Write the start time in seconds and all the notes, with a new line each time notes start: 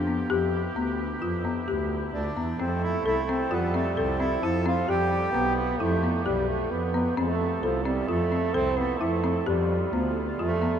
Already playing: F2 B3 F4 G4
0.07 B3
0.30 F2 E4 G4
0.76 D2 B3
1.22 F2 F4
1.45 B3
1.68 D2 G4
2.13 D2 D4
2.37 E2 B3
2.58 F2 F3 A3 C4 A4
2.83 E4
3.05 C2 E4 A4
3.29 C4
3.51 F2 G3 B3 F4
3.73 A3 C4
3.96 C2 C4 A4
4.19 C4 E4
4.42 F2 F3 E4 A4
4.66 C4 F4
4.87 F2 G3 B3 D4 G4
5.32 B1 B3
5.79 F2 A3 E4
6.03 B3
6.25 B1 G3 G4
6.48 A3
6.72 F2 B3
6.94 B3
7.17 F2 F3 A3 C4 E4 A4
7.63 C2 F3 A4
7.84 G3 C4
8.08 F2 A3 F4
8.32 C4
8.54 C2 C4 A4
8.77 B3 C4
9.00 F2 A3 E4
9.24 C4
9.46 F2 G3 B3 F4 G4
9.93 D2 F3 B3
10.38 F2 A3 F4
10.62 B3